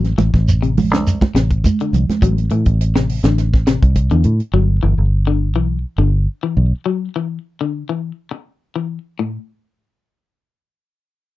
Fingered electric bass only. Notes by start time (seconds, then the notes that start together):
Already playing: A1
0.18 A1
0.34 A1
0.91 C2
1.34 A1
1.93 C2
2.09 muted fingered electric bass stroke
2.22 A1
2.51 A2
2.66 A1
3.24 A1
3.82 C2
4.11 E2
4.25 A2
4.53 G1
4.83 G1
4.98 G1
5.56 B1
5.98 G1
6.57 B1
6.72 muted fingered electric bass stroke